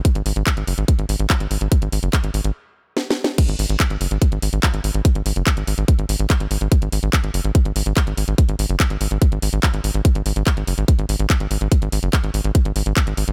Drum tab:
CC |------------------------------------------------|------------------------------------------------|x-----------------------------------------------|------------------------------------------------|
HH |x--x--o--x--x--x--o--x--x--x--o--x--x--x--o--x--|x--x--o--x--x--x--o--x--------------------------|x--x--o--x--x--x--o--x--x--x--o--x--x--x--o--x--|x--x--o--x--x--x--o--x--x--x--o--x--x--x--o--x--|
CP |------------x-----------------------x-----------|------------x-----------------------------------|------------x-----------------------x-----------|------------x-----------------------x-----------|
SD |------------------------------------------------|------------------------------------o---o---o---|------------------------------------------------|------------------------------------------------|
BD |o-----------o-----------o-----------o-----------|o-----------o-----------------------------------|o-----------o-----------o-----------o-----------|o-----------o-----------o-----------o-----------|

CC |------------------------------------------------|------------------------------------------------|------------------------------------------------|------------------------------------------------|
HH |x--x--o--x--x--x--o--x--x--x--o--x--x--x--o--x--|x--x--o--x--x--x--o--x--x--x--o--x--x--x--o--x--|x--x--o--x--x--x--o--x--x--x--o--x--x--x--o--x--|x--x--o--x--x--x--o--x--x--x--o--x--x--x--o--x--|
CP |------------x-----------------------x-----------|------------x-----------------------x-----------|------------x-----------------------x-----------|------------x-----------------------x-----------|
SD |------------------------------------------------|------------------------------------------------|------------------------------------------------|------------------------------------------------|
BD |o-----------o-----------o-----------o-----------|o-----------o-----------o-----------o-----------|o-----------o-----------o-----------o-----------|o-----------o-----------o-----------o-----------|